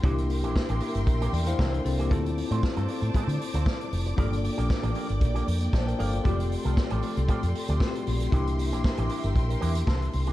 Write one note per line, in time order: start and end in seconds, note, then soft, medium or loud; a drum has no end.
0.02 0.44 C2 medium
0.02 0.22 E3 medium
0.02 1.30 A#3 medium
0.02 0.17 A#3 medium
0.02 0.17 C4 medium
0.02 1.30 D4 medium
0.02 1.31 E4 medium
0.02 1.31 G4 medium
0.02 0.16 G4 medium
0.02 2.09 A#4 medium
0.02 2.09 E5 medium
0.02 2.09 G5 medium
0.02 2.09 C6 medium
0.02 kick loud
0.02 closed hi-hat medium
0.18 muted clean electric guitar stroke soft
0.18 closed hi-hat soft
0.30 muted clean electric guitar stroke soft
0.30 open hi-hat medium
0.43 0.53 A#1 medium
0.43 0.54 E3 medium
0.43 0.55 A#3 medium
0.43 0.55 C4 medium
0.43 0.55 G4 medium
0.43 closed hi-hat soft
0.56 muted clean electric guitar stroke soft
0.56 kick loud
0.56 snare loud
0.69 0.79 A1 loud
0.69 0.80 E3 medium
0.69 0.80 A#3 medium
0.69 0.81 C4 medium
0.69 0.81 G4 medium
0.69 closed hi-hat soft
0.80 0.96 E3 medium
0.80 0.95 A#3 medium
0.80 0.94 C4 medium
0.80 0.94 G4 medium
0.80 open hi-hat soft
0.95 1.04 G1 loud
0.95 muted clean electric guitar stroke soft
0.95 closed hi-hat soft
1.07 1.27 A#1 loud
1.07 muted clean electric guitar stroke soft
1.07 kick loud
1.07 closed hi-hat medium
1.21 1.32 E3 medium
1.21 1.33 A#3 medium
1.21 1.33 C4 medium
1.21 1.33 G4 medium
1.21 closed hi-hat medium
1.33 1.53 E2 medium
1.33 1.46 D5 medium
1.33 1.46 G5 medium
1.33 open hi-hat medium
1.46 1.72 E4 medium
1.46 1.58 C5 medium
1.46 1.58 F5 medium
1.46 muted clean electric guitar stroke soft
1.46 closed hi-hat medium
1.59 1.79 C2 medium
1.59 1.78 E3 medium
1.59 1.73 A#3 medium
1.59 1.72 C4 medium
1.59 1.72 A4 loud
1.59 2.07 C5 medium
1.59 kick loud
1.59 snare loud
1.73 1.85 D4 soft
1.73 1.84 A#4 medium
1.73 muted clean electric guitar stroke soft
1.73 closed hi-hat soft
1.85 2.11 C2 medium
1.85 1.98 C4 medium
1.85 1.98 A4 medium
1.85 muted clean electric guitar stroke soft
1.85 open hi-hat medium
1.99 2.11 E3 soft
1.99 2.24 A#3 medium
1.99 2.11 A#3 medium
1.99 2.10 C4 medium
1.99 2.23 G4 medium
1.99 2.12 G4 medium
1.99 closed hi-hat soft
2.10 2.41 D2 loud
2.10 2.30 A3 medium
2.10 4.13 C4 medium
2.10 2.24 C4 medium
2.10 4.14 E4 medium
2.10 4.14 F4 medium
2.10 2.24 F4 medium
2.10 2.24 A4 medium
2.10 4.15 A4 medium
2.10 4.16 C5 medium
2.10 8.28 D5 medium
2.10 4.16 A5 medium
2.10 6.21 D6 medium
2.10 kick loud
2.10 closed hi-hat medium
2.25 muted clean electric guitar stroke soft
2.25 closed hi-hat soft
2.37 muted clean electric guitar stroke soft
2.37 open hi-hat medium
2.51 2.60 A2 medium
2.51 2.62 A3 medium
2.51 2.62 C4 medium
2.51 2.62 F4 medium
2.51 2.63 C5 medium
2.51 closed hi-hat soft
2.63 kick loud
2.63 snare loud
2.76 2.86 G2 medium
2.76 2.88 A3 medium
2.76 2.88 C4 medium
2.76 2.88 F4 medium
2.76 2.89 A4 medium
2.76 closed hi-hat soft
2.88 3.04 A3 medium
2.88 3.02 C4 medium
2.88 3.02 F4 medium
2.88 3.01 A4 medium
2.88 open hi-hat medium
3.02 3.11 A2 loud
3.02 closed hi-hat soft
3.15 3.35 A3 medium
3.15 3.28 C4 medium
3.15 3.28 F4 medium
3.15 3.27 A4 loud
3.15 muted fingered electric bass stroke soft
3.15 kick medium
3.15 closed hi-hat medium
3.28 3.37 D3 medium
3.28 muted clean electric guitar stroke soft
3.28 closed hi-hat medium
3.41 muted clean electric guitar stroke soft
3.41 open hi-hat medium
3.54 3.63 D2 medium
3.54 3.65 A3 medium
3.54 3.65 C4 medium
3.54 3.66 F4 medium
3.54 3.66 A4 medium
3.54 closed hi-hat medium
3.66 muted clean electric guitar stroke soft
3.66 kick loud
3.66 snare loud
3.80 muted clean electric guitar stroke soft
3.80 closed hi-hat soft
3.92 4.12 F1 medium
3.92 open hi-hat medium
4.06 muted clean electric guitar stroke medium
4.06 closed hi-hat soft
4.17 4.48 G1 medium
4.17 4.37 F3 medium
4.17 6.20 A#3 medium
4.17 4.31 A#3 medium
4.17 6.23 A#3 medium
4.17 6.21 D4 medium
4.17 4.31 D4 medium
4.17 5.71 F4 medium
4.17 4.31 G4 medium
4.17 5.71 A4 medium
4.17 8.28 G5 medium
4.17 kick loud
4.17 closed hi-hat medium
4.32 muted clean electric guitar stroke soft
4.32 closed hi-hat soft
4.44 muted clean electric guitar stroke soft
4.44 open hi-hat medium
4.57 4.67 A#1 medium
4.57 4.68 F3 medium
4.57 4.68 A#3 medium
4.57 4.68 D4 medium
4.57 4.69 G4 medium
4.57 closed hi-hat soft
4.69 muted clean electric guitar stroke soft
4.69 kick loud
4.69 snare loud
4.83 4.93 A1 medium
4.83 4.94 F3 medium
4.83 4.94 A#3 medium
4.83 4.94 D4 medium
4.83 4.95 G4 medium
4.83 closed hi-hat soft
4.95 5.10 F3 medium
4.95 5.08 A#3 medium
4.95 5.08 D4 medium
4.95 5.07 G4 medium
4.95 open hi-hat soft
5.09 5.21 G1 medium
5.09 muted clean electric guitar stroke medium
5.09 closed hi-hat soft
5.21 5.41 A#1 loud
5.21 muted clean electric guitar stroke soft
5.21 kick loud
5.21 closed hi-hat medium
5.35 5.46 F3 medium
5.35 5.46 A#3 medium
5.35 5.47 D4 medium
5.35 5.47 G4 medium
5.35 closed hi-hat soft
5.47 5.67 F2 medium
5.47 muted clean electric guitar stroke soft
5.47 open hi-hat medium
5.61 muted clean electric guitar stroke soft
5.61 closed hi-hat medium
5.73 5.93 A#1 medium
5.73 5.87 C5 medium
5.73 5.86 A5 soft
5.73 kick loud
5.73 snare loud
5.87 5.99 A#4 medium
5.87 5.99 G5 medium
5.87 muted clean electric guitar stroke soft
5.87 closed hi-hat soft
5.98 6.19 G1 medium
5.98 6.17 F3 medium
5.98 6.12 A#3 medium
5.98 6.12 D4 medium
5.98 6.11 G4 medium
5.98 6.12 A4 medium
5.98 6.12 F5 medium
5.98 open hi-hat medium
6.13 6.24 F4 soft
6.13 6.37 D5 medium
6.13 muted clean electric guitar stroke soft
6.13 closed hi-hat soft
6.24 6.55 F1 medium
6.24 6.43 F3 medium
6.24 7.76 A3 medium
6.24 6.38 A3 medium
6.24 7.77 C4 medium
6.24 6.38 C4 medium
6.24 7.77 F4 medium
6.24 6.37 G4 loud
6.24 7.78 G4 medium
6.24 8.30 A4 medium
6.24 10.33 C6 medium
6.24 kick loud
6.24 closed hi-hat medium
6.38 muted clean electric guitar stroke soft
6.38 closed hi-hat soft
6.51 muted clean electric guitar stroke soft
6.51 open hi-hat medium
6.65 6.74 C2 medium
6.65 6.76 F3 medium
6.65 6.76 A3 medium
6.65 6.76 C4 medium
6.65 6.77 A4 medium
6.65 closed hi-hat soft
6.77 kick loud
6.77 snare loud
6.90 7.00 A1 medium
6.90 7.01 F3 medium
6.90 7.02 A3 medium
6.90 7.02 C4 medium
6.90 7.03 G4 medium
6.90 closed hi-hat soft
7.02 7.18 F3 medium
7.02 7.16 A3 medium
7.02 7.16 C4 medium
7.02 7.15 G4 medium
7.02 open hi-hat medium
7.17 7.26 C2 loud
7.17 muted clean electric guitar stroke soft
7.17 closed hi-hat soft
7.29 7.47 F3 medium
7.29 7.43 A3 medium
7.29 7.42 C4 medium
7.29 7.42 G4 medium
7.29 kick loud
7.29 closed hi-hat medium
7.43 7.52 F2 loud
7.43 muted clean electric guitar stroke soft
7.43 closed hi-hat medium
7.55 muted clean electric guitar stroke soft
7.55 open hi-hat medium
7.68 7.78 D2 medium
7.68 7.80 F3 soft
7.68 7.80 A3 soft
7.68 7.80 C4 medium
7.68 7.81 G4 medium
7.68 closed hi-hat medium
7.80 8.32 A3 soft
7.80 8.32 C4 soft
7.80 8.32 F4 medium
7.80 7.87 F#4 soft
7.80 muted clean electric guitar stroke soft
7.80 kick loud
7.80 snare medium
7.88 8.32 G4 medium
7.95 muted clean electric guitar stroke soft
7.95 closed hi-hat soft
8.07 8.27 A#1 medium
8.07 open hi-hat medium
8.20 muted clean electric guitar stroke soft
8.20 closed hi-hat medium
8.30 8.72 C2 medium
8.30 8.51 E3 medium
8.30 10.33 A#3 medium
8.30 8.46 A#3 medium
8.30 8.46 C4 medium
8.30 10.33 D4 medium
8.30 10.33 E4 medium
8.30 10.33 G4 medium
8.30 8.46 G4 medium
8.30 10.33 A#4 medium
8.30 10.33 E5 medium
8.30 10.33 G5 medium
8.30 kick loud
8.30 closed hi-hat medium
8.47 muted clean electric guitar stroke soft
8.47 closed hi-hat soft
8.59 muted clean electric guitar stroke soft
8.59 open hi-hat medium
8.72 8.81 A#1 medium
8.72 8.83 E3 medium
8.72 8.84 A#3 medium
8.72 8.84 C4 medium
8.72 8.84 G4 medium
8.72 closed hi-hat soft
8.84 muted clean electric guitar stroke soft
8.84 kick loud
8.84 snare loud
8.97 9.07 A1 medium
8.97 9.09 E3 medium
8.97 9.09 A#3 medium
8.97 9.09 C4 medium
8.97 9.09 G4 medium
8.97 closed hi-hat soft
9.09 9.25 E3 medium
9.09 9.23 A#3 medium
9.09 9.23 C4 medium
9.09 9.22 G4 medium
9.09 open hi-hat medium
9.23 9.33 G1 medium
9.23 muted clean electric guitar stroke soft
9.23 closed hi-hat soft
9.36 9.55 A#1 medium
9.36 kick loud
9.36 closed hi-hat medium
9.49 muted clean electric guitar stroke soft
9.49 closed hi-hat medium
9.61 9.82 E2 medium
9.61 9.80 E3 medium
9.61 9.74 A#3 medium
9.61 9.74 C4 medium
9.61 9.73 G4 loud
9.61 open hi-hat medium
9.75 muted clean electric guitar stroke soft
9.75 closed hi-hat medium
9.87 10.07 C2 medium
9.87 10.06 E3 medium
9.87 10.01 A#3 medium
9.87 10.01 C4 loud
9.87 10.01 A4 loud
9.87 kick loud
9.87 snare loud
10.01 muted clean electric guitar stroke soft
10.01 closed hi-hat soft
10.13 10.33 C2 medium
10.13 muted clean electric guitar stroke soft
10.13 open hi-hat medium
10.27 10.33 E3 medium
10.27 10.33 A#3 medium
10.27 10.33 C4 medium
10.27 10.33 G4 medium
10.27 closed hi-hat medium